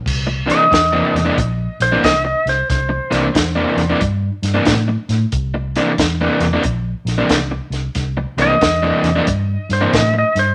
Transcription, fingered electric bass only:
X:1
M:4/4
L:1/8
Q:"Swing" 1/4=91
K:Cmix
V:1 name="Fingered electric bass" clef=bass
C,,2 E,, E,, B,,, B,,, C,, C,, | C,, C,, E,, E,, G,, G,, A,, A,, | C,,2 E,, E,, B,,, B,,, C,, C,, | C,, C,, E,, E,, G,, G,, A,, G,, |]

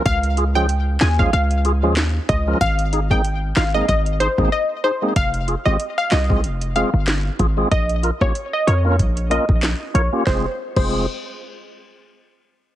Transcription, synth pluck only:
X:1
M:4/4
L:1/16
Q:"Swing 16ths" 1/4=94
K:Fm
V:1 name="Synth pluck"
f2 z g z2 a f f3 z3 e z | f2 z g z2 f e e z c z e z c z | f z2 e z f e z3 f z4 z | e z2 d z e d z3 e z3 d z |
c z2 c2 z8 z3 |]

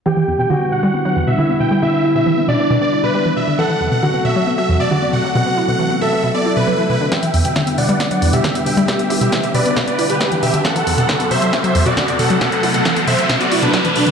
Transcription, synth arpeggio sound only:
X:1
M:4/4
L:1/16
Q:1/4=136
K:Em
V:1 name="Synth arpeggio sound" clef=bass
E, E, E,, B,, D, B, B,, G, B, F, E,, B,, D, B, B,, G, | B,, B, E B,, E, B, B,, B, B,, B, E B,, G, E, B,, D, | E, E, E,, B,, D, B, B,, F, B, F, E,, B,, D, B, B,, F, | B,, B, E B,, E, B, B,, B, B,, B, E B,, F, E, B,, D, |
E, E, E,, B,, D, B, B,, G, B, F, E,, B,, D, B, B,, G, | B,, B, E B,, E, B, B,, B, B,, B, E B,, G, E, B,, D, | E, E, E,, B,, D, B, B,, F, B, F, E,, B,, D, B, B,, F, | B,, B, E B,, E, B, B,, B, B,, B, E B,, F, E, B,, D, |]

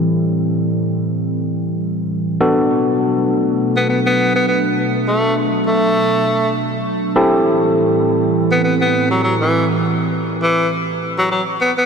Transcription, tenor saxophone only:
X:1
M:4/4
L:1/16
Q:"Swing 16ths" 1/4=101
K:Ador
V:1 name="Tenor saxophone"
z16 | z8 z B, B, B,2 B, B, z | z2 A,2 z2 A,6 z4 | z8 z B, B, B,2 F, F, E,- |
E, z4 z E,2 z3 F, F, z B, B, |]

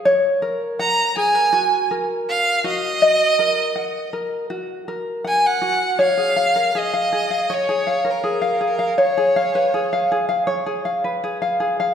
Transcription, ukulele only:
X:1
M:4/4
L:1/16
Q:1/4=80
K:Bbphr
V:1 name="Ukulele"
d2 B2 g2 A B G2 B4 G2 | e2 B2 g2 B2 G2 B2 g2 G2 | d A f B A f A f d A f B A f A f | d A f c A f A f d A f c A f A f |]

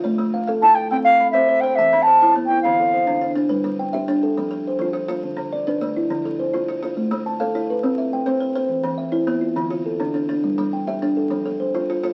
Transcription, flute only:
X:1
M:12/8
L:1/8
Q:3/8=138
K:Gmix
V:1 name="Flute"
z4 a g g f2 e2 g | e2 a2 z g f4- f z | z12 | z12 |
z12 | z12 | z12 |]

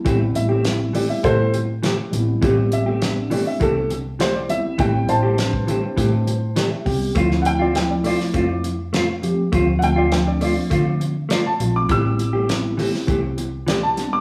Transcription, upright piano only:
X:1
M:4/4
L:1/16
Q:1/4=101
K:Am
V:1 name="Upright piano"
z2 e4 d e [Ac]2 z6 | z2 e4 d e A2 z2 c d e2 | g2 [ca]12 z2 | z2 [^fg] d g d d4 z6 |
z2 [^fg] d g d d4 z2 d a2 d' | e'8 z4 d a2 d' |]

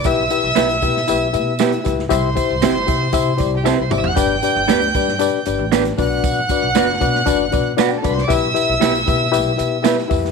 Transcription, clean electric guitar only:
X:1
M:4/4
L:1/8
Q:1/4=116
K:Em
V:1 name="Clean electric guitar"
z2 [B,EGB] z3 [B,EGB] z | z2 [CEGc] z3 [CEGc] z | z2 [B,DGB] z3 [B,DGB] z | z2 [B,DFB] z3 [B,DFB] z |
z2 [B,EGB] z3 [B,EGB] z |]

